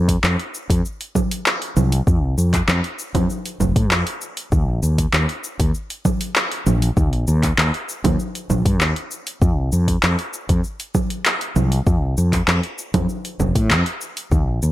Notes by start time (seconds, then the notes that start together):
Already playing: F2
0.08 kick, open hi-hat, cabasa
0.23 F2, clap, cabasa
0.40 open hi-hat
0.55 cabasa
0.70 F2, kick, open hi-hat, cabasa
0.85 cabasa
1.01 open hi-hat, cabasa
1.15 kick, low conga, cabasa
1.31 open hi-hat, cabasa
1.46 clap, cabasa
1.62 open hi-hat
1.77 C2, low conga, cabasa
1.92 open hi-hat, cabasa
2.07 F2, kick, cabasa
2.23 C2
2.38 F2, cabasa
2.53 kick, clap, open hi-hat, cabasa
2.68 F2, clap, cabasa
2.84 open hi-hat
2.99 cabasa
3.15 F2, kick, open hi-hat, low conga, cabasa
3.30 cabasa
3.46 open hi-hat, cabasa
3.60 F1, kick, low conga, cabasa
3.76 A2, kick, open hi-hat, cabasa
3.91 F2, clap, cabasa
4.07 open hi-hat
4.21 cabasa
4.37 open hi-hat, cabasa
4.52 D#2, kick, cabasa
4.68 A#1
4.83 D#2, cabasa
4.98 kick, open hi-hat, cabasa
5.13 D#2, clap, cabasa
5.29 open hi-hat
5.44 cabasa
5.60 D#2, kick, open hi-hat, cabasa
5.75 cabasa
5.90 open hi-hat, cabasa
6.05 kick, low conga, cabasa
6.21 open hi-hat, cabasa
6.36 clap, cabasa
6.52 open hi-hat
6.67 A#1, low conga, cabasa
6.82 open hi-hat, cabasa
6.97 D#2, kick, cabasa
7.13 A#1, open hi-hat
7.28 D#2, cabasa
7.43 kick, clap, open hi-hat, cabasa
7.58 D#2, clap, cabasa
7.74 open hi-hat
7.89 cabasa
8.04 D#2, kick, open hi-hat, low conga, cabasa
8.20 cabasa
8.35 open hi-hat, cabasa
8.50 A#1, kick, low conga, cabasa
8.65 G2, kick, open hi-hat, cabasa
8.80 D#2, clap, cabasa
8.96 open hi-hat
9.11 cabasa
9.27 open hi-hat, cabasa
9.42 F2, kick, cabasa
9.58 C2
9.72 F2, cabasa
9.88 kick, open hi-hat, cabasa
10.03 F2, clap, cabasa
10.19 open hi-hat
10.34 cabasa
10.49 F2, kick, open hi-hat, cabasa
10.64 cabasa
10.80 open hi-hat, cabasa
10.95 kick, low conga, cabasa
11.10 open hi-hat, cabasa
11.25 clap, cabasa
11.41 open hi-hat
11.56 C2, low conga, cabasa
11.72 open hi-hat, cabasa
11.87 F2, kick, cabasa
12.02 C2
12.17 F2, cabasa
12.33 kick, clap, open hi-hat, cabasa
12.48 F2, clap, cabasa
12.63 open hi-hat
12.78 cabasa
12.94 F2, kick, open hi-hat, low conga, cabasa
13.09 cabasa
13.25 open hi-hat, cabasa
13.40 F1, kick, low conga, cabasa
13.55 A2, kick, open hi-hat, cabasa
13.70 F2, clap, cabasa
13.86 open hi-hat
14.01 cabasa
14.17 open hi-hat, cabasa
14.31 D#2, kick, cabasa
14.48 A#1
14.62 D#2, cabasa